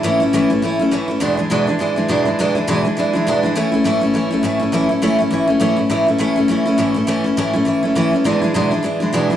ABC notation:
X:1
M:4/4
L:1/8
Q:"Swing" 1/4=205
K:A
V:1 name="Steel-string acoustic guitar"
[A,,E,A,CE] [A,CE] [A,,E,A,CE] [A,CE] [E,A,CE] [A,CE] [A,,E,A,CE] [A,CE] | [E,,B,,E,G,DE] [E,G,DE] [E,,B,,E,G,DE] [E,G,DE] [E,G,DE] [E,G,DE] [E,,B,,E,G,DE] [E,G,DE] | [E,,B,,E,G,DE] [E,G,DE] [E,,B,,E,G,DE] [E,G,DE] [E,G,DE] [E,G,DE] [E,,B,,E,G,DE] [E,G,DE] | [A,,E,A,CE] [A,CE] [A,,E,A,CE] [A,CE] [E,A,CE] [A,CE] [A,,E,A,CE] [A,CE] |
[A,,E,A,CE] [A,CE] [A,,E,A,CE] [A,CE] [E,A,CE] [A,CE] [A,,E,A,CE] [A,CE] | [A,,E,A,CE] [A,CE] [A,,E,A,CE] [A,CE] [E,A,CE] [A,CE] [A,,E,A,CE] [A,CE] | [A,,E,A,CE] [A,CE] [A,,E,A,CE] [A,CE] [E,A,CE] [A,CE] [A,,E,A,CE] [A,CE] | [E,,B,,E,G,DE] [E,G,DE] [E,,B,,E,G,DE] [E,G,DE] [E,G,DE] [E,G,DE] [E,,B,,E,G,DE] [E,G,DE] |]